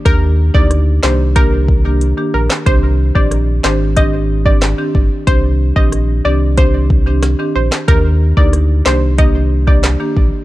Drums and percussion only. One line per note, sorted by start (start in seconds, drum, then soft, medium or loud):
0.06 kick loud
0.06 closed hi-hat medium
0.55 kick medium
0.71 cross-stick medium
0.71 closed hi-hat medium
1.03 snare loud
1.03 clap medium
1.36 kick loud
1.36 closed hi-hat medium
1.68 kick medium
2.01 closed hi-hat medium
2.50 snare loud
2.50 clap medium
2.66 kick loud
2.66 closed hi-hat medium
3.15 kick medium
3.31 cross-stick medium
3.31 closed hi-hat medium
3.64 snare loud
3.64 clap medium
3.97 kick loud
3.97 closed hi-hat medium
4.46 kick medium
4.62 snare loud
4.62 clap loud
4.62 closed hi-hat medium
4.95 kick medium
5.27 kick loud
5.27 closed hi-hat medium
5.76 kick medium
5.92 cross-stick medium
5.92 closed hi-hat medium
6.57 kick loud
6.57 closed hi-hat medium
6.90 kick loud
7.23 cross-stick loud
7.23 snare medium
7.23 closed hi-hat medium
7.72 snare loud
7.72 clap medium
7.88 kick loud
7.88 closed hi-hat medium
8.37 kick loud
8.53 cross-stick medium
8.53 closed hi-hat medium
8.86 snare loud
8.86 clap medium
9.18 kick loud
9.18 closed hi-hat medium
9.67 kick loud
9.84 snare loud
9.84 clap loud
9.84 closed hi-hat medium
10.17 kick medium